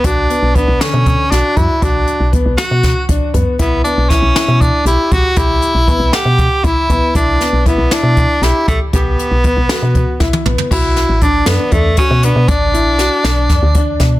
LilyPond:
<<
  \new Staff \with { instrumentName = "Grand piano" } { \time 7/8 \key b \minor \tempo 4 = 118 fis'8 b8 d'8 d4 fis'4 | fis'4 b8 fis'4 d'8 b8 | e'8 b8 e'8 e'4 g'4 | g'4 b8 fis''4 e'8 b8 |
e'8 b8 e'8 e'4 g'4 | g'4 b8 fis'4 e'8 b8 | fis'4 d'8 d'4 fis'8 d'8 | d'8 e'8 fis'8 d'4 d'4 | }
  \new Staff \with { instrumentName = "Tenor saxophone" } { \time 7/8 \key b \minor d'4 b8 cis'4 d'8 e'8 | d'4 r8 fis'4 r4 | b8 d'8 cis'4 d'8 e'8 fis'8 | e'4. g'4 e'4 |
d'4 b8 d'4 e'8 a8 | b2. r8 | e'4 d'8 b8 a8 cis'8 b8 | d'2. r8 | }
  \new Staff \with { instrumentName = "FM bass" } { \clef bass \time 7/8 \key b \minor b,,8 r16 b,,8 b,,16 r16 b,8 r16 b,,16 r16 fis,16 r16 | b,,8 r16 b,,8 b,,16 r16 b,8 r16 b,,16 r16 fis,16 r16 | b,,8 r16 b,,8 b,,16 r16 b,8 r16 b,,16 r16 b,,16 r16 | b,,8 r16 b,,8 b,,16 r16 b,8 r16 b,,16 r16 b,,16 r16 |
b,,8 r16 b,,8 b,,16 r16 b,8 r16 b,,16 r16 b,,16 r16 | b,,8 r16 b,,8 b,,16 r16 b,8 r16 b,,16 r16 b,,16 r16 | b,,8. a,,8. fis,16 r16 e,8 r16 b,8 b,16 | a,,8. b,,8 r16 b,,8 fis,16 d,8. b,8 | }
  \new DrumStaff \with { instrumentName = "Drums" } \drummode { \time 7/8 <hh bd>8 hh8 <hh bd>8 <hh sn>8 <hh bd>8 <hh sn>8 <hh bd>8 | <hh bd>8 hh8 <hh bd>8 <hh sn>8 <hh bd sn>8 <hh bd>8 <hh bd>8 | <hh bd>8 hh8 <hh bd sn>8 <hh sn>8 <hh bd>8 hh8 <hh bd>8 | <hh bd>8 hh8 <hh bd>8 <hh sn>8 <hh bd>8 <hh bd>8 <hh bd>8 |
<hh bd>8 <hh sn>8 <hh bd>8 <hh sn>8 <hh bd>8 <hh sn>8 <hh bd>8 | <hh bd>8 hh8 <hh bd>8 <hh sn>8 <hh bd>8 <bd sn>16 tommh16 toml16 tomfh16 | <cymc bd>8 <hh sn>8 <hh bd>8 <hh sn>8 <hh bd>8 <hh bd>8 hh8 | <hh bd>8 hh8 <hh sn>8 <hh sn>8 <hh bd sn>8 <hh bd>8 <hh bd sn>8 | }
>>